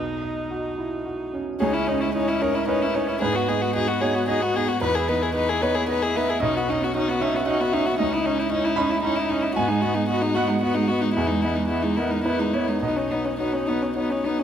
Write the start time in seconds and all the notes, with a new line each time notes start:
Already playing: B1 D#4
0.22 D#5
0.50 F#4
0.78 E4
1.05 F#4
1.34 C#4
1.60 C#2 C#4 D#4 G#4
1.73 C#4 E4
1.87 C#4 D#4 D#5
2.01 C#4 E4
2.14 C#4 D#4 E4 D#5
2.28 C#4 E4
2.41 C#4 D#4 A#4 D#5
2.54 C#4 E4
2.68 C#4 D#4 E4 B4 D#5
2.82 C#4 E4
2.94 C#4 D#4 C#5 D#5
3.07 C#4 E4
3.21 G#2 D#4 G#4 B4
3.34 B3 F#4
3.47 B3 D#4 G#4 D#5
3.60 B3 F#4
3.74 D#4 F#4 G#4 D#5
3.88 B3 F#4
4.00 B3 D#4 G#4 C#5 D#5
4.13 B3 F#4
4.27 D#4 F#4 G#4 D#5
4.40 B3 F#4
4.54 B3 D#4 G#4 D#5
4.68 B3 F#4
4.81 E2 D#4 B4
4.94 E4 G#4
5.08 B3 D#4 B4 D#5
5.21 E4 G#4
5.34 D#4 G#4 B4 D#5
5.48 E4 G#4
5.62 B3 D#4 B4 C#5 D#5
5.75 E4 G#4
5.88 D#4 G#4 B4 D#5
6.02 E4 G#4
6.15 B3 D#4 B4 D#5 E5
6.28 E4 G#4
6.40 B1 C#4 D#4 D#5
6.55 B3 F#4
6.68 C#4 D#4 D#5
6.82 B3 F#4
6.95 C#4 D#4 F#4 D#5
7.08 B3 F#4
7.20 C#4 D#4 D#5 E5
7.34 B3 F#4
7.46 C#4 D#4 F#4 D#5 F#5
7.60 B3 F#4
7.72 C#4 D#4 D#5 E5
7.86 B3 F#4
7.99 C#2 C#4 D#4 D#5
8.13 D#4 E4
8.25 C#4 D#4 D#5
8.38 D#4 E4
8.52 C#4 D#4 E4 D#5
8.64 D#4 E4
8.76 C#4 D#4 D#5 B5
8.90 D#4 E4
9.03 C#4 D#4 E4 D#5 A#5
9.16 D#4 E4
9.29 C#4 D#4 D#5
9.42 D#4 E4
9.55 G#2 B3 F#4 G#5
9.68 G#3 D#4
9.81 B3 F#4 D#5
9.94 G#3 D#4
10.09 B3 F#4 D#5
10.22 G#3 D#4
10.35 B3 F#4 D#5 F#5
10.48 G#3 D#4
10.61 B3 F#4 D#5
10.74 G#3 D#4
10.88 B3 F#4 D#5
11.01 G#3 D#4
11.14 E2 B3 E4 G#4
11.27 G#3 D#4
11.42 B3 E4 D#5
11.55 G#3 D#4
11.68 B3 E4 D#5
11.82 G#3 D#4
11.96 B3 E4 A#4 D#5
12.10 G#3 D#4
12.24 B3 E4 B4 D#5
12.39 G#3 D#4
12.53 B3 E4 C#5 D#5
12.68 G#3 D#4
12.82 B1 B3 D#4 D#5
12.96 C#4 D#4
13.11 B3 D#4 C#5
13.25 C#4 D#4
13.39 B3 D#4 F#4 C#5
13.53 C#4 D#4
13.67 B3 D#4 C#5
13.82 C#4 D#4
13.96 B3 D#4 F#4 C#5
14.10 C#4 D#4
14.24 B3 D#4 C#5
14.38 C#4 D#4